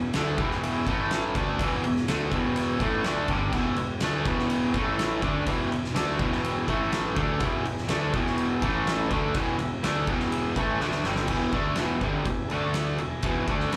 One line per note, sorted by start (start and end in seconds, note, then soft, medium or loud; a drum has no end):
0.00 0.12 E1 medium
0.00 0.10 E2 medium
0.00 0.10 B2 medium
0.13 0.37 D2 medium
0.13 0.38 D3 loud
0.13 0.39 A3 loud
0.13 0.39 D4 loud
0.13 0.48 B4 medium
0.13 0.49 E5 medium
0.13 snare loud
0.13 ride loud
0.18 0.49 G#5 medium
0.38 0.83 E1 loud
0.38 0.86 E2 medium
0.38 0.87 B2 loud
0.38 0.87 E3 loud
0.38 kick loud
0.38 ride medium
0.51 snare soft
0.62 0.86 B4 medium
0.62 0.84 E5 medium
0.62 0.87 G#5 loud
0.62 ride loud
0.85 1.31 A1 loud
0.85 1.35 A2 loud
0.85 1.35 E3 loud
0.85 1.24 A4 medium
0.85 1.25 E5 medium
0.85 1.25 A5 loud
0.85 kick loud
0.85 ride medium
0.89 1.35 A3 loud
1.11 snare loud
1.11 ride medium
1.34 1.58 D2 medium
1.34 1.58 D3 medium
1.34 1.59 A3 medium
1.34 1.59 D4 loud
1.34 1.93 B4 medium
1.34 1.92 E5 medium
1.34 1.92 G#5 loud
1.34 kick loud
1.34 ride medium
1.59 1.82 E1 medium
1.59 1.83 E2 medium
1.59 1.83 B2 loud
1.59 1.84 E3 loud
1.59 kick loud
1.59 ride loud
1.83 2.06 E1 medium
1.83 2.03 E2 medium
1.83 2.03 B2 medium
1.83 ride medium
1.96 snare soft
2.07 2.30 D2 medium
2.07 2.31 D3 loud
2.07 2.32 A3 loud
2.07 2.32 D4 loud
2.07 2.40 B4 medium
2.07 2.41 E5 medium
2.07 2.41 G#5 medium
2.07 snare loud
2.07 ride loud
2.32 2.77 E1 loud
2.32 2.80 E2 medium
2.32 2.80 B2 loud
2.32 2.80 E3 loud
2.32 kick medium
2.32 ride medium
2.56 2.90 B4 medium
2.56 2.90 E5 medium
2.56 2.90 G#5 medium
2.56 ride medium
2.80 3.03 A1 medium
2.80 3.03 A2 loud
2.80 3.04 E3 loud
2.80 3.05 A3 loud
2.80 kick loud
2.80 ride medium
3.04 3.27 D2 medium
3.04 3.28 D3 medium
3.04 3.29 A3 medium
3.04 3.29 D4 loud
3.04 3.38 B4 medium
3.04 3.38 E5 medium
3.04 3.38 G#5 loud
3.04 snare loud
3.04 ride medium
3.28 3.51 G1 medium
3.28 3.52 G2 medium
3.28 3.52 D3 medium
3.28 3.53 G3 medium
3.28 3.53 F#5 medium
3.28 kick loud
3.28 ride medium
3.53 3.75 E1 medium
3.53 3.76 E2 medium
3.53 3.77 B2 medium
3.53 3.77 E3 loud
3.53 3.87 B4 loud
3.53 3.87 E5 loud
3.53 3.87 G#5 loud
3.53 kick loud
3.53 crash medium
3.76 4.00 E1 medium
3.76 3.97 E2 medium
3.76 3.97 B2 medium
3.76 ride medium
4.00 4.23 D2 medium
4.00 4.25 D3 medium
4.00 4.26 A3 loud
4.00 4.26 D4 loud
4.00 4.35 B4 medium
4.00 4.36 E5 medium
4.00 4.35 G#5 medium
4.00 snare loud
4.00 ride loud
4.25 4.70 E1 loud
4.25 4.73 E2 medium
4.25 4.74 B2 loud
4.25 4.74 E3 loud
4.25 kick loud
4.25 ride medium
4.39 snare soft
4.50 4.74 B4 medium
4.50 4.74 E5 medium
4.50 4.74 G#5 loud
4.50 ride medium
4.74 5.19 A1 loud
4.74 5.22 A2 loud
4.74 5.22 E3 loud
4.74 5.22 A3 loud
4.74 5.14 A4 medium
4.74 5.13 E5 medium
4.74 5.13 A5 loud
4.74 kick loud
4.74 ride medium
4.99 snare loud
4.99 ride loud
5.20 5.45 D2 medium
5.20 5.46 D3 medium
5.20 5.46 A3 medium
5.20 5.79 B4 medium
5.20 5.80 E5 medium
5.20 5.80 G#5 loud
5.20 kick loud
5.20 ride medium
5.24 5.47 D4 medium
5.47 5.69 E1 medium
5.47 5.70 E2 medium
5.47 5.71 B2 medium
5.47 5.71 E3 loud
5.47 kick loud
5.47 ride loud
5.72 5.94 E1 medium
5.72 5.91 E2 medium
5.72 5.91 B2 medium
5.72 ride medium
5.84 snare soft
5.93 6.17 D2 medium
5.93 6.18 D3 loud
5.93 6.19 A3 medium
5.93 6.19 D4 loud
5.93 6.27 B4 medium
5.93 6.28 E5 medium
5.93 6.28 G#5 medium
5.93 snare loud
5.93 ride loud
6.18 6.65 E1 medium
6.18 6.67 E2 medium
6.18 6.67 B2 medium
6.18 6.67 E3 loud
6.18 6.30 B5 medium
6.18 kick loud
6.18 ride medium
6.30 6.42 A5 medium
6.30 snare soft
6.41 6.66 B4 medium
6.41 6.65 E5 medium
6.41 6.76 G#5 medium
6.41 ride medium
6.66 7.13 A1 loud
6.66 7.15 A2 medium
6.66 7.16 E3 loud
6.66 7.15 A3 loud
6.66 7.05 A4 medium
6.66 6.91 E5 medium
6.66 7.06 A5 loud
6.66 kick medium
6.66 ride medium
6.80 6.91 F#5 medium
6.92 7.16 E5 medium
6.92 snare loud
6.92 ride medium
7.16 7.39 D2 medium
7.16 7.40 D3 medium
7.16 7.40 A3 medium
7.16 7.41 D4 loud
7.16 7.75 B4 medium
7.16 7.75 E5 medium
7.16 7.75 G#5 medium
7.16 kick loud
7.16 ride medium
7.40 7.63 E1 medium
7.40 7.64 E2 loud
7.40 7.64 B2 loud
7.40 7.65 E3 loud
7.40 kick loud
7.40 ride medium
7.65 7.87 E1 medium
7.65 7.85 E2 medium
7.65 7.85 B2 medium
7.65 ride medium
7.78 snare soft
7.88 8.11 D2 medium
7.88 8.12 D3 medium
7.88 8.13 A3 loud
7.88 8.13 D4 loud
7.88 8.22 B4 medium
7.88 8.22 E5 medium
7.88 8.22 G#5 medium
7.88 snare loud
7.88 ride loud
8.14 8.59 E1 medium
8.14 8.61 E2 medium
8.14 8.62 B2 loud
8.14 8.62 E3 loud
8.14 kick loud
8.14 ride medium
8.27 snare soft
8.37 8.62 B4 medium
8.37 8.61 E5 medium
8.37 8.62 G#5 loud
8.37 ride medium
8.61 9.07 A1 loud
8.61 9.10 A2 medium
8.61 9.11 E3 loud
8.61 9.10 A3 loud
8.61 9.00 A4 loud
8.61 9.01 E5 medium
8.61 9.01 A5 loud
8.61 kick loud
8.61 ride medium
8.87 snare loud
8.87 ride loud
9.09 9.33 D2 medium
9.09 9.34 D3 medium
9.09 9.34 A3 loud
9.09 9.35 D4 medium
9.09 9.68 B4 medium
9.09 9.68 E5 medium
9.09 9.68 G#5 medium
9.09 kick loud
9.09 ride medium
9.34 9.57 E1 medium
9.34 9.58 E2 loud
9.34 9.59 B2 loud
9.34 9.59 E3 loud
9.34 kick loud
9.34 ride loud
9.59 9.82 E1 medium
9.59 9.79 E2 medium
9.59 9.79 B2 medium
9.59 ride medium
9.82 10.06 D2 medium
9.82 10.07 D3 medium
9.82 10.07 A3 loud
9.82 10.08 D4 loud
9.82 10.16 B4 medium
9.82 10.16 E5 medium
9.82 10.16 G#5 medium
9.82 snare loud
9.82 ride loud
10.07 10.53 E1 loud
10.07 10.56 E2 medium
10.07 10.56 B2 medium
10.07 10.56 E3 loud
10.07 kick loud
10.07 ride medium
10.20 snare soft
10.29 10.64 B4 medium
10.29 10.64 E5 medium
10.29 10.54 G#5 medium
10.29 ride medium
10.55 10.79 A1 medium
10.55 10.79 A2 medium
10.55 10.80 E3 loud
10.55 10.79 A3 loud
10.55 10.77 G#5 medium
10.55 kick loud
10.55 ride medium
10.77 11.03 D2 medium
10.77 11.03 D3 medium
10.77 11.04 A3 medium
10.77 11.12 B4 medium
10.77 11.24 E5 medium
10.77 11.12 G#5 loud
10.77 snare medium
10.82 11.04 D4 medium
10.92 snare medium
11.04 11.27 G1 medium
11.04 11.28 G2 medium
11.04 11.28 D3 loud
11.04 11.29 G3 medium
11.04 snare medium
11.16 snare medium
11.27 11.51 E1 medium
11.27 11.52 E2 loud
11.27 11.52 B2 medium
11.27 11.53 E3 loud
11.27 11.61 B4 medium
11.27 11.61 E5 medium
11.27 11.61 G#5 loud
11.27 kick loud
11.27 crash loud
11.52 11.75 D2 medium
11.52 11.76 D3 medium
11.52 11.77 A3 medium
11.52 11.77 D4 loud
11.52 kick loud
11.52 ride medium
11.75 12.00 E1 medium
11.75 12.01 E2 medium
11.75 12.01 B2 medium
11.75 12.02 E3 medium
11.75 12.10 B4 medium
11.75 12.09 E5 medium
11.75 12.10 G#5 medium
11.75 snare loud
11.75 ride loud
12.01 12.24 G1 medium
12.01 12.25 G2 loud
12.01 12.26 D3 medium
12.01 12.26 G3 loud
12.01 kick loud
12.01 ride medium
12.25 12.48 E1 medium
12.25 12.46 E2 medium
12.25 12.46 B2 medium
12.25 12.50 B4 medium
12.25 12.50 E5 medium
12.25 12.50 G#5 medium
12.25 kick medium
12.25 ride medium
12.48 12.96 D2 loud
12.48 12.99 D3 loud
12.48 12.88 A4 medium
12.48 12.88 D5 medium
12.48 12.88 A5 loud
12.48 ride medium
12.52 12.99 A3 loud
12.52 12.99 D4 loud
12.74 snare loud
12.74 ride medium
12.98 13.22 E1 medium
12.98 13.18 E2 medium
12.98 13.19 B2 medium
12.98 13.57 B4 medium
12.98 13.57 E5 medium
12.98 13.57 G#5 medium
12.98 ride medium
13.23 13.46 E1 medium
13.23 13.47 E2 medium
13.23 13.47 B2 loud
13.23 13.48 E3 loud
13.23 kick loud
13.23 ride medium
13.47 13.70 D2 medium
13.47 13.71 D3 loud
13.47 13.72 A3 medium
13.47 13.72 D4 loud
13.47 kick loud
13.47 ride medium
13.60 snare soft
13.71 13.77 E1 medium
13.71 13.77 E2 loud
13.71 13.77 B2 loud
13.71 13.77 E3 loud
13.71 13.77 B4 medium
13.71 13.77 E5 medium
13.71 13.77 G#5 medium
13.71 snare loud
13.71 ride loud